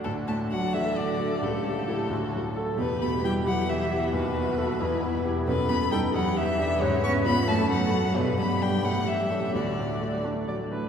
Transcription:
X:1
M:6/8
L:1/8
Q:3/8=88
K:D
V:1 name="Violin"
A a f e d2 | A4- A z | B b g f e2 | B4- B z |
B b g f e2 | c c' b a f2 | B b g f e2 | d3 z3 |]
V:2 name="Viola"
F3 A3 | G3 F F A | G6 | F3 E3 |
A3 G3 | B3 A3 | G6 | F3 D d B |]
V:3 name="Grand piano"
D,, A,, [DF] [DF] A, [DF] | C,, G, [EA] D,, F, [FA] | E,, B,, [EG] [EG] B, [EG] | ^D,, B, [FA] E,, B, [EG] |
F,, B, [^DA] E,, B, [=DG] | ^G,, B, [C^E] F,, A, [CF] | G,, G, [B,D] A,, G, [A,C] | D,, A,, [A,D] [A,D] F, [A,D] |]
V:4 name="Cello" clef=bass
A,, A, F, E, D,2 | A,,4- A,, z | B,, B, G, F, E,2 | B,,4- B,, z |
B,, B, G, F, E,2 | C, C B, A, F,2 | B,, B, G, F, E,2 | D,3 z3 |]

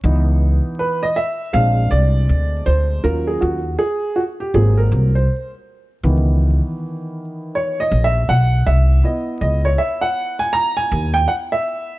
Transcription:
X:1
M:4/4
L:1/16
Q:"Swing 16ths" 1/4=80
K:C#dor
V:1 name="Upright piano"
z4 B d e2 ^e2 =d4 ^B2 | A G F2 G2 F =G ^G A2 ^B2 z3 | z8 (3c2 d2 e2 f2 e2 | z2 d c e f2 g a g2 =g f e3 |]
V:2 name="Upright piano"
[E,B,D]6 z2 [G,^B,=D]8 | [F,C^E]2 z6 [F,A,^B,]2 z6 | [D,E,B,]16 | [B,Ed]16 |]
V:3 name="Upright bass" clef=bass
C,,3 z4 z A,,,2 ^B,,,2 =D,,2 D,,2 | D,,2 D,,2 z4 G,,,2 ^B,,,2 z4 | C,,3 z6 z A,,,2 B,,,2 ^B,,,2 | z2 C,,2 z6 D,,2 z4 |]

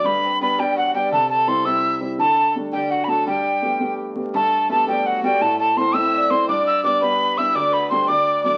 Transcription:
X:1
M:6/8
L:1/16
Q:3/8=112
K:G
V:1 name="Tin whistle"
b4 b2 g2 f2 g2 | a2 a2 c'2 e'4- e'/2 z3/2 | a4 z2 g2 f3/2 b/2 a2 | g8 z4 |
a4 a2 g2 f2 g2 | a2 a2 c'2 e'4 c'2 | d'2 e'2 d'2 b4 e'2 | d'2 b2 c'2 d'4 d'2 |]
V:2 name="Fiddle"
B4 B2 G2 F2 G2 | A2 A4 e4- e/2 z3/2 | A4 z2 G2 F2 A2 | G8 z4 |
A4 A2 G2 F4 | A2 A2 c2 e4 c2 | d4 d2 B4 e2 | d3/2 A/2 B2 c2 d4 d2 |]
V:3 name="Bouzouki"
B,2 C2 B,2 G,2 F,2 G,2 | A,2 A,2 C2 E4- E/2 z3/2 | A,3/2 B,/2 A,2 z2 G,2 F,4 | G,8 z4 |
A,4 A,2 G,2 F,2 G,2 | A,2 A,2 C2 E2 D2 C2 | D2 E2 D2 B,4 E2 | D2 B,2 C2 D4 D2 |]
V:4 name="Upright piano"
G,,4 [G,B,D]2 [G,B,D]4 [G,B,D]2 | C,4 [G,CE]2 [G,CE]4 [G,CE]2 | D,4 [G,A,D]2 D,4 [A,DF]2 | G,,4 [A,B,G]2 [A,B,G]4 [A,B,G]2 |
G,,4 [A,B,G]2 [A,B,G]4 [A,B,G]2 | A,,4 [A,CE]2 [A,CE]4 [A,CE]2 | G,,4 [G,B,D]2 [G,B,D]4 [G,B,D]2 | D,,4 [G,A,D]2 D,,4 [F,A,D]2 |]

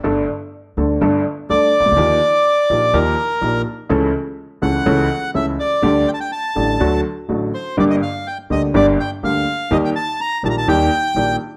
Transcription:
X:1
M:4/4
L:1/16
Q:1/4=124
K:Gm
V:1 name="Bandoneon"
z12 d4- | d8 B6 z2 | z6 ^f6 =e2 d2- | d2 g/2 a/2 g a6 z4 c2 |
d e f2 g2 e2 d2 g2 f4 | e g a2 b2 a/2 b/2 a g6 z2 |]
V:2 name="Upright piano" clef=bass
[G,,,G,,G,A,DA]2 z4 [D,,D,G,A,DA]2 [G,,,G,,G,A,DA]2 z2 [D,,D,G,A,DA]2 z/2 C,,/2 ^C,,/2 D,,/2 | [E,,E,F,B,EG]2 z4 [B,,,B,,F,B,EG]2 [E,,E,F,B,EG]2 z2 [B,,,B,,F,B,EG]2 z2 | [^C,,^C,=E,A,^CA]2 z4 [C,,C,E,A,CA]2 [C,,C,E,A,CA]2 z2 [C,,C,E,A,CA]2 z2 | [D,,D,G,A,G]2 z4 [A,,,A,,D,G,A,G]2 [D,,D,^F,A,^F]2 z2 [A,,,A,,D,F,A,F]2 z2 |
[G,,,G,,D,G,B,G]2 z4 [D,,D,G,B,G]2 [G,,,G,,D,G,B,G]2 z2 [D,,D,G,B,G]2 z2 | [E,,E,G,B,G]2 z4 [B,,,B,,E,G,B,G]2 [E,,E,G,B,G]2 z2 [B,,,B,,E,G,B,G]2 z2 |]
V:3 name="Upright bass" clef=bass
G,,,3/2 z4 z/2 D,,3/2 z/2 G,,,3/2 z2 z/2 D,,3/2 z C,,/2 ^C,,/2 D,,/2 | E,,3/2 z4 z/2 B,,,3/2 z/2 E,,3/2 z2 z/2 B,,,3/2 z2 z/2 | ^C,,3/2 z4 z/2 C,,3/2 z/2 C,,3/2 z2 z/2 C,,3/2 z2 z/2 | D,,3/2 z4 z/2 A,,,3/2 z/2 D,,3/2 z2 z/2 A,,,3/2 z2 z/2 |
G,,,3/2 z4 z/2 D,,3/2 z/2 G,,,3/2 z2 z/2 D,,3/2 z2 z/2 | E,,3/2 z4 z/2 B,,,3/2 z/2 E,,3/2 z2 z/2 B,,,3/2 z2 z/2 |]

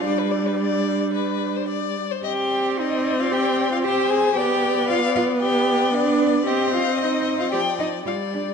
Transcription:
X:1
M:4/4
L:1/16
Q:1/4=113
K:Cm
V:1 name="Violin"
d12 z4 | g4 e3 f g3 f g2 a2 | g4 f2 f2 g4 d4 | g2 f2 e3 f g2 e2 f2 d2 |]
V:2 name="Violin"
d =B d B d4 B3 c d3 c | e2 d8- d2 c4 | d8 d8 | e8 d4 d4 |]
V:3 name="Cello"
D12 z4 | G4 E3 F G3 F G2 A2 | G4 F2 F2 G4 D4 | G2 F2 E3 F G2 E2 F2 D2 |]
V:4 name="Viola"
G,12- G,2 z2 | C16 | =B,16 | C8 F,4 G,4 |]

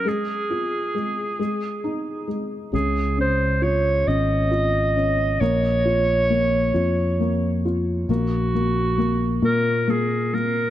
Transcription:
X:1
M:6/8
L:1/8
Q:3/8=45
K:Db
V:1 name="Clarinet"
A4- A z | A c d e3 | d4- d z | G3 B A B |]
V:2 name="Felt piano"
A, F A, A, E A, | D, D F D F D | B, F B, F B, F | B, B, B, B, B, B, |]
V:3 name="Fretless electric bass" clef=bass
z6 | D,,3 A,,,3 | B,,,3 F,,3 | B,,,3 B,,3 |]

